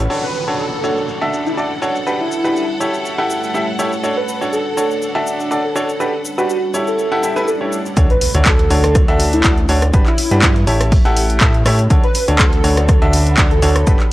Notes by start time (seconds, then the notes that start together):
Already playing: C#5 F#5 B5
0.10 D4 F#4 A4 C#5 F#5, crash, downlifter, shaker
0.23 B4
0.35 B4, shaker
0.48 D4 F#4 A4 C#5, shaker
0.59 A4, shaker
0.84 D4 F#4 A4 C#5, shaker
0.97 shaker
1.09 shaker
1.21 D4 F#4 A4 E5
1.33 shaker
1.46 E4, shaker
1.57 D4 F#4 A4 D5, shaker
1.82 D4 F#4 A4 C#5, shaker
1.96 shaker
2.07 G3 D4 F#4 G4 B4, shaker
2.20 E4
2.32 shaker
2.44 D4 F#4 G4 B4, shaker
2.56 shaker
2.80 A3 E4 G4 A4 C#5, shaker
2.94 shaker
3.05 shaker
3.18 E4 G4 A4 F#5
3.30 shaker
3.43 shaker
3.54 E4 G4 A4 E5, shaker
3.79 E4 G4 A4 C#5, shaker
3.92 shaker
4.03 D4 F#4 A4 C#5, shaker
4.17 B4
4.28 B4, shaker
4.41 D4 F#4 A4 C#5, shaker
4.53 A4, shaker
4.77 D4 F#4 A4 C#5, shaker
4.91 shaker
5.02 shaker
5.15 D4 F#4 A4 E5
5.27 shaker
5.40 shaker
5.51 D4 F#4 A4 D5, shaker
5.64 A4
5.75 D4 F#4 A4 C#5, shaker
5.89 shaker
6.00 G3 D4 F#4 G4 B4, shaker
6.25 shaker
6.38 D4 F#4 G4 B4, shaker
6.49 F#4, shaker
6.74 A3 E4 G4 A4 C#5, shaker
6.87 A4, shaker
6.98 swell, shaker
7.12 E4 G4 A4 F#5
7.23 E4 G4 A4 E5, shaker
7.36 E4 G4 A4 B4, shaker
7.48 A4, shaker
7.61 E4 G4 A4 C#5
7.72 shaker
7.86 shaker
7.97 D2 D4 F#4 A4 C#5, kick, closed hi-hat, impact, shaker
8.10 B4, closed hi-hat
8.21 B4, open hi-hat, shaker
8.35 D2 D4 F#4 A4 C#5, closed hi-hat
8.45 A4, kick, snare, clap, closed hi-hat, shaker
8.59 closed hi-hat
8.70 D2 D4 F#4 A4 C#5, open hi-hat, shaker
8.84 cross-stick, closed hi-hat
8.95 kick, cross-stick, closed hi-hat, shaker
9.08 D2 D4 F#4 A4 E5, closed hi-hat
9.20 open hi-hat, shaker
9.33 E4, closed hi-hat
9.44 D2 D4 F#4 A4 D5, kick, snare, clap, closed hi-hat, shaker
9.58 closed hi-hat
9.69 D2 D4 F#4 A4 C#5, open hi-hat, shaker
9.82 cross-stick, closed hi-hat
9.93 G1 D4 F#4 G4 B4, kick, closed hi-hat, shaker
10.06 E4, clap, closed hi-hat
10.18 open hi-hat, shaker
10.31 G2 D4 F#4 G4 B4, snare, closed hi-hat
10.42 kick, snare, clap, closed hi-hat, shaker
10.56 snare, closed hi-hat
10.67 A1 E4 G4 A4 C#5, open hi-hat, shaker
10.81 cross-stick, closed hi-hat
10.92 kick, closed hi-hat, open hi-hat
11.05 A1 E4 G4 A4 F#5, closed hi-hat
11.17 F#5, open hi-hat, shaker
11.23 B5
11.30 closed hi-hat
11.41 A2 E4 G4 A4 E5, kick, snare, clap, closed hi-hat, shaker
11.54 closed hi-hat
11.65 A2 E4 G4 A4 C#5, cross-stick, open hi-hat, shaker
11.79 closed hi-hat
11.90 D2 D4 F#4 A4 C#5, kick, closed hi-hat, shaker
12.04 B4, closed hi-hat
12.15 B4, open hi-hat, shaker
12.28 D2 D4 F#4 A4 C#5, closed hi-hat
12.39 A4, kick, snare, clap, closed hi-hat, shaker
12.53 closed hi-hat
12.64 D2 D4 F#4 A4 C#5, open hi-hat, shaker
12.77 cross-stick, closed hi-hat
12.89 kick, cross-stick, closed hi-hat, shaker
13.02 D2 D4 F#4 A4 E5, closed hi-hat
13.13 open hi-hat, shaker
13.27 closed hi-hat
13.37 D2 D4 F#4 A4 D5, kick, snare, clap, closed hi-hat, shaker
13.51 A4, closed hi-hat
13.62 D2 D4 F#4 A4 C#5, open hi-hat, shaker
13.76 cross-stick, closed hi-hat
13.87 G1 D4 F#4 G4 B4, kick, closed hi-hat, shaker
14.00 clap, closed hi-hat